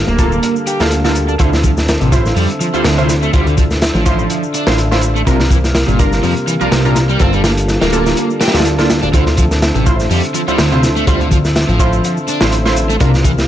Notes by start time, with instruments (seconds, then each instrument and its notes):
Already playing: tonewheel organ D3 G3 A#3 A4 F5
0.07 analog synth bass D1, overdriven electric guitar A#3, shaker
0.18 synth stab A#3 F4 A4, kick, closed hi-hat, shaker
0.32 shaker
0.43 closed hi-hat, shaker
0.56 shaker
0.67 overdriven electric guitar G4, closed hi-hat, shaker
0.80 analog synth bass D2, synth stab A#3 F4 A4, snare, shaker
0.91 closed hi-hat, shaker
1.04 synth stab A#3 F4 A4, snare, shaker
1.15 closed hi-hat, shaker
1.29 overdriven electric guitar D4, shaker
1.39 analog synth bass D2, overdriven electric guitar D3, tonewheel organ D3 C4 E5, synth stab E4 F4 C5, kick, closed hi-hat, shaker
1.53 snare, shaker
1.63 overdriven electric guitar F3, kick, closed hi-hat, shaker
1.77 snare, shaker
1.88 snare, closed hi-hat, shaker
2.01 analog synth bass A1, overdriven electric guitar C3, closed hi-hat, shaker
2.12 synth stab E4 F4 C5, kick, closed hi-hat, shaker
2.26 snare, shaker
2.36 analog synth bass F2, overdriven electric guitar G3, open hi-hat, shaker
2.50 closed hi-hat, shaker
2.61 overdriven electric guitar F3, closed hi-hat, shaker
2.74 analog synth bass D2, overdriven electric guitar G3, synth stab E4 F4 C5, shaker
2.85 analog synth bass D2, overdriven electric guitar D3, snare, closed hi-hat, shaker
2.98 overdriven electric guitar C3, synth stab E4 F4 C5, shaker
3.09 snare, closed hi-hat, shaker
3.22 overdriven electric guitar A3, shaker
3.33 analog synth bass D2, overdriven electric guitar G3, tonewheel organ D4, synth stab E4 F4 C5, kick, closed hi-hat, shaker
3.47 overdriven electric guitar D3, closed hi-hat, shaker
3.57 overdriven electric guitar F3, kick, closed hi-hat, shaker
3.71 snare, shaker
3.82 snare, closed hi-hat, shaker
3.95 analog synth bass A1, overdriven electric guitar F3, shaker
4.06 synth stab E4 F4 C5, kick, closed hi-hat, shaker
4.19 shaker
4.30 closed hi-hat, shaker
4.43 shaker
4.54 overdriven electric guitar D4, closed hi-hat, shaker
4.67 analog synth bass A1, synth stab E4 F4 C5, snare, shaker
4.78 closed hi-hat, shaker
4.91 synth stab E4 F4 C5, snare, shaker
5.01 closed hi-hat, shaker
5.16 overdriven electric guitar A3, shaker
5.27 analog synth bass C2, overdriven electric guitar C3, tonewheel organ C3 G3 A#3 F5, synth stab D4 F4 A#4, kick, closed hi-hat, shaker
5.40 snare, shaker
5.51 overdriven electric guitar E3, kick, closed hi-hat, shaker
5.64 snare, shaker
5.75 snare, closed hi-hat, shaker
5.88 analog synth bass G1, overdriven electric guitar A#2, closed hi-hat, shaker
5.99 synth stab D4 F4 A#4, kick, closed hi-hat, shaker
6.12 snare, shaker
6.23 analog synth bass F2, overdriven electric guitar F3, open hi-hat, shaker
6.37 closed hi-hat, shaker
6.47 overdriven electric guitar E3, closed hi-hat, shaker
6.61 analog synth bass C2, overdriven electric guitar F3, synth stab D4 F4 A#4, shaker
6.72 analog synth bass C2, overdriven electric guitar C3, snare, closed hi-hat, shaker
6.85 overdriven electric guitar A#2, synth stab D4 F4 A#4, shaker
6.95 snare, closed hi-hat, shaker
7.09 overdriven electric guitar G3, shaker
7.19 analog synth bass G1, tonewheel organ D3 G3 F4 A4, synth stab A#3 F4 A4, overdriven electric guitar C4, kick, closed hi-hat, shaker
7.33 overdriven electric guitar G3, closed hi-hat, shaker
7.44 overdriven electric guitar A#3, snare, shaker
7.57 closed hi-hat, shaker
7.68 snare, shaker
7.82 analog synth bass D1, overdriven electric guitar A#3, snare, shaker
7.93 synth stab A#3 F4 A4, closed hi-hat, shaker
8.06 snare, shaker
8.17 closed hi-hat, swell, shaker
8.30 shaker
8.41 overdriven electric guitar G4, snare, closed hi-hat, shaker
8.48 snare, closed hi-hat
8.54 analog synth bass D2, synth stab A#3 F4 A4, snare, closed hi-hat, shaker
8.59 snare, closed hi-hat
8.65 closed hi-hat, shaker
8.78 synth stab A#3 F4 A4, snare, shaker
8.90 snare, closed hi-hat, shaker
9.02 analog synth bass D1, overdriven electric guitar D4, closed hi-hat, shaker
9.13 analog synth bass D2, overdriven electric guitar D3, tonewheel organ C4 E5, synth stab E4 F4 C5, kick, closed hi-hat, shaker
9.26 snare, shaker
9.37 overdriven electric guitar F3, kick, closed hi-hat, shaker
9.51 snare, shaker
9.62 snare, closed hi-hat, shaker
9.75 analog synth bass A1, overdriven electric guitar C3, closed hi-hat, shaker
9.86 synth stab E4 F4 C5, kick, closed hi-hat, shaker
10.00 snare, shaker
10.10 analog synth bass F2, overdriven electric guitar G3, open hi-hat, shaker
10.24 closed hi-hat, shaker
10.34 overdriven electric guitar F3, closed hi-hat, shaker
10.48 analog synth bass D2, overdriven electric guitar G3, synth stab E4 F4 C5, shaker
10.58 analog synth bass D2, overdriven electric guitar D3, snare, closed hi-hat, shaker
10.72 overdriven electric guitar C3, synth stab E4 F4 C5, shaker
10.83 snare, closed hi-hat, shaker
10.96 overdriven electric guitar A3, shaker
11.07 analog synth bass D2, overdriven electric guitar G3, synth stab E4 F4 C5, kick, closed hi-hat, shaker
11.21 overdriven electric guitar D3, closed hi-hat, shaker
11.32 overdriven electric guitar F3, kick, closed hi-hat, shaker
11.45 snare, shaker
11.56 snare, closed hi-hat, shaker
11.69 analog synth bass A1, overdriven electric guitar F3, shaker
11.80 synth stab E4 F4 C5, kick, closed hi-hat, shaker
11.93 shaker
12.04 closed hi-hat, shaker
12.17 shaker
12.28 overdriven electric guitar D4, closed hi-hat, shaker
12.41 analog synth bass A1, synth stab E4 F4 C5, snare, shaker
12.52 closed hi-hat, shaker
12.65 synth stab E4 F4 C5, snare, shaker
12.76 closed hi-hat, shaker
12.90 overdriven electric guitar A3, shaker
13.00 analog synth bass C2, overdriven electric guitar C3, tonewheel organ C3 G3 A#3 F5, synth stab D4 F4 A#4, kick, closed hi-hat, shaker
13.14 snare, shaker
13.24 overdriven electric guitar E3, kick, closed hi-hat, shaker
13.38 snare, shaker